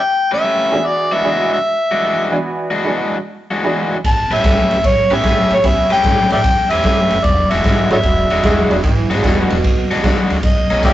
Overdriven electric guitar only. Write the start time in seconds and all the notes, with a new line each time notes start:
0.31 A3 C#4 G4 B4
0.45 A3 C#4 G4 B4
1.12 E3 G#3 D4 F#4
1.25 E3 G#3 D4 F#4
1.91 E3 G#3 D4 F#4
2.05 E3 G#3 D4 F#4
2.71 E3 G#3 D4 F#4
2.84 E3 G#3 D4 F#4
3.51 E3 G#3 D4 F#4
3.64 E3 G#3 D4 F#4
4.31 A3 C#4 G4 B4
4.44 A3 C#4 G4 B4
5.11 A3 C#4 G4 B4
5.24 A3 C#4 G4 B4
5.91 A3 C#4 G4 B4
6.05 A3 C#4 G4 B4
6.71 A3 C#4 G4 B4
6.85 A3 C#4 G4 B4
7.51 E3 G#3 D4 F#4
7.64 E3 G#3 D4 F#4
8.31 E3 G#3 D4 F#4
8.44 E3 G#3 D4 F#4
9.10 E3 G#3 D4 F#4
9.24 E3 G#3 D4 F#4
9.91 E3 G#3 D4 F#4
10.04 E3 G#3 D4 F#4
10.71 B2 A3 C#4 D#4
10.83 B2 A3 C#4 D#4